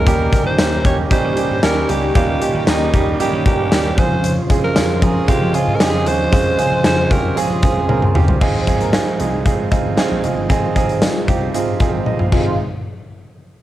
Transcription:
Already playing: A#4
0.06 D#2 D#3 G3 A#3 C#4 D#4 G4, kick, closed hi-hat
0.32 G3 A#3 C#4 D#4 G4, kick, closed hi-hat
0.46 D#3 C5
0.58 D#2 G3 A#3 C#4 D#4 G4, snare, closed hi-hat, tambourine
0.84 D#2 G3 A#3 C#4 D#4 G4 C#5, kick, closed hi-hat
1.10 G3 A#3 C#4 D#4 G4 C5, kick, closed hi-hat
1.24 D#3
1.36 G3 A#3 C#4 D#4 G4, closed hi-hat
1.50 G2
1.62 D#2 G3 A#3 C#4 D#4 G4 A#4, snare, closed hi-hat, tambourine
1.88 C#2 G3 A#3 C#4 D#4 G4, closed hi-hat
2.15 D#2 G3 A#3 C#4 D#4 F4 G4, kick, closed hi-hat
2.41 G3 A#3 C#4 D#4 G4, closed hi-hat
2.54 D#3
2.67 D#2 G3 A#3 C#4 D#4 G4, snare, closed hi-hat, tambourine
2.93 D#2 G3 A#3 C#4 D#4 G4, kick, closed hi-hat
3.19 G3 A#3 C#4 D#4 G4, muted slap bass stroke, closed hi-hat
3.33 D#3
3.45 G3 A#3 C#4 D#4 G4, kick, closed hi-hat
3.59 G2
3.71 D#2 G3 A#3 C#4 D#4 G4, snare, closed hi-hat, tambourine
3.98 F2 C#3 F3 G#3 C4 C#4 F4 G#4 C5, kick, closed hi-hat
4.24 closed hi-hat
4.49 G#3 C4 C#4 F4 G#4, kick, closed hi-hat
4.63 F3 A#4
4.76 F2 G#3 C4 C#4 F4 G#4, snare, closed hi-hat, tambourine
5.02 F2 G#3 C4 C#4 F4 G#4 A#4, kick, closed hi-hat
5.28 G#3 C4 C#4 F4 G4 G#4, kick, closed hi-hat
5.41 F3
5.54 G#3 C4 C#4 F4 G#4, closed hi-hat
5.68 G#2
5.76 A#4
5.80 F2 G#3 C4 C#4 F4 G4 G#4, snare, closed hi-hat, tambourine
6.06 D#2 G#3 C4 C#4 F4 G#4 C5, closed hi-hat
6.32 F2 G#3 C4 C#4 F4 G#4, kick, closed hi-hat
6.58 G#3 C4 C#4 F4 G#4, closed hi-hat
6.72 F3
6.84 F2 G#3 C4 C#4 F4 G#4 C5, snare, closed hi-hat, tambourine
7.10 F2 G#3 C4 C#4 F4 G4 A#4, kick, closed hi-hat
7.36 G#3 C4 C#4 F4 G#4, muted slap bass stroke, closed hi-hat
7.50 F3
7.63 G#3 C4 C#4 F4 G#4, kick, closed hi-hat
7.76 F2
7.89 C#2 G#3 C4 C#4 F4 A#4, high tom
8.02 mid tom
8.15 G1 G#3 C4 C#4 F4 G4, mid tom
8.28 floor tom
8.41 G#1 F3 G#3 C4 D#4 F4 G#4, kick, crash
8.55 C4 C5
8.67 G#1 C4 D#4 F4 G#4, kick, closed hi-hat
8.81 A#3 A#4, closed hi-hat
8.93 C4 D#4 F4 G#4, snare, closed hi-hat
9.19 C2 G#3 C4 D#4 F4 G#4, closed hi-hat
9.45 G#2 C4 D#4 F4 G#4, kick, closed hi-hat
9.71 C4 D#4 F4 G#4, kick, closed hi-hat
9.85 G#1
9.97 C4 D#4 F4 G#4, snare, closed hi-hat
10.11 A#1
10.23 F1 C4 D#4 F4 G#4, closed hi-hat
10.37 G1
10.49 G#1 C4 D#4 F4 G#4, kick, closed hi-hat
10.76 G#1 C4 D#4 F4 G#4, kick, closed hi-hat
10.89 closed hi-hat
11.01 C4 D#4 F4 G#4, snare, closed hi-hat, tambourine
11.27 C2 C4 D#4 F4 G4, kick, closed hi-hat
11.53 G#2 C4 D#4 F4 G#4, closed hi-hat
11.80 C4 D#4 F4 G#4, kick, closed hi-hat
11.93 G#1
12.06 D#5, high tom
12.19 A#1 F5, mid tom
12.32 G#1 C3 G#3 C4 D#4 F4 G#4 C5, kick, crash

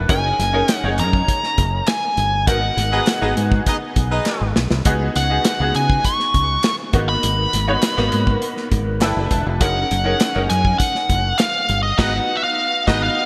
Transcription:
Already playing: D4 E4 A4 B4 B5
0.08 F#1 C#4 D#4 G#4 A#4 G#5, kick, closed hi-hat
0.39 F#1, snare, closed hi-hat
0.53 C#4 D#4 G#4 A#4
0.69 snare, clap, closed hi-hat
0.75 F#5
0.83 F#1 C#4 D#4 G#4 C#5
0.99 F#2 A#5, clap, closed hi-hat
1.13 kick
1.28 kick, closed hi-hat
1.43 snare
1.58 F#1, kick, closed hi-hat
1.87 G#5, snare, clap, closed hi-hat
2.17 G1, closed hi-hat
2.47 G#1 B3 D#4 F#4 A#4 F#5, kick, closed hi-hat
2.77 G#1, snare, closed hi-hat
2.91 B3 D#4 F#4 G#4 B4 D#5
3.07 snare, clap, closed hi-hat
3.21 G#1 B3 D#4 F#4 G#4 B4 D#5
3.37 G#2, closed hi-hat
3.52 kick
3.66 D#4 G#4 B4 D#5, kick, closed hi-hat
3.96 B1, kick, closed hi-hat
4.11 D#4 G#4 B4 D#5
4.26 snare, clap
4.41 G#1
4.56 B1, snare
4.71 C2, snare
4.85 C#2 B3 D#4 F#4 G#4, kick, closed hi-hat
5.15 C#2 F#5, snare, closed hi-hat
5.29 B3 D#4 F#4 G#4
5.45 snare, clap, closed hi-hat
5.60 C#2 B3 D#4 F#4 G#4
5.75 C#3 G#5, clap, closed hi-hat
5.90 kick
6.04 C#6, kick, closed hi-hat
6.19 snare
6.34 C#2, kick, closed hi-hat
6.64 snare, clap, closed hi-hat
6.93 G#1 A#3 B3 D#4 F#4, kick, closed hi-hat
7.09 B5
7.23 G#1, closed hi-hat
7.53 G#1, snare, closed hi-hat
7.67 B3 D#4 F#4 C#5
7.82 snare, clap, closed hi-hat
7.97 G#1 A#3 B3 D#4 F#4, snare
8.12 G#2, closed hi-hat
8.27 kick
8.42 closed hi-hat
8.57 snare
8.72 G#1, kick, closed hi-hat
9.01 G1 D4 E4 A4 B4 G5, snare, clap, closed hi-hat
9.17 F#1
9.31 E1 A5, kick, closed hi-hat
9.46 F1
9.60 F#1 C#4 D#4 G#4 A#4 F#5, kick, closed hi-hat
9.91 F#1, closed hi-hat
10.04 C#4 D#4 G#4 A#4
10.20 snare, clap, closed hi-hat
10.35 F#1 C#4 D#4 G#4 A#4
10.50 F#2 G#5, clap, closed hi-hat
10.65 kick
10.78 F#5, kick, closed hi-hat
10.95 snare
11.10 F#1, kick, closed hi-hat
11.38 F5, snare, clap, closed hi-hat
11.69 G1, closed hi-hat
11.83 D#5
11.98 G#1 B3 D#4 F#4 G#4 B4 D#5 F#5, kick, snare, crash
12.37 E5
12.43 F5
12.87 G#1 B3 D#4 F#4 G#4 B4 D#5, kick, snare
13.03 F5

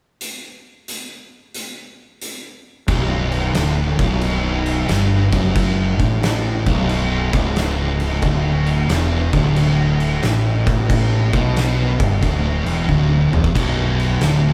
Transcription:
0.21 closed hi-hat
0.88 closed hi-hat
1.54 closed hi-hat
2.22 closed hi-hat
2.88 B0 B1, kick, crash
3.32 crash
3.55 D1 D2, snare, crash
3.98 B0 B1, kick, crash
4.21 crash
4.66 crash
4.88 G1 G2, snare, crash
5.32 F#1 F#2, kick, crash
5.56 kick, crash
5.98 A1 A2, kick, crash
6.23 snare, crash
6.66 B0 B1, kick, crash
6.89 crash
7.32 C#1 C#2, kick, crash
7.56 snare, crash
8.00 crash
8.21 D1 D2, kick, crash
8.66 crash
8.89 E1 E2, snare, crash
9.33 D1 D2, kick, crash
9.56 crash
10.00 crash
10.23 A1 A2, snare, crash
10.67 A1 A2, kick, crash
10.90 kick, crash
11.33 B1 B2, kick, crash
11.56 snare, crash
11.99 G1 G2, kick, crash
12.22 D1 D2, kick, crash
12.65 E1 E2, crash
12.89 D1 D2, kick
13.32 E1 E2, mid tom
13.44 kick
13.53 B0 B1, kick, crash
13.99 crash
14.21 D1 D2, snare, crash

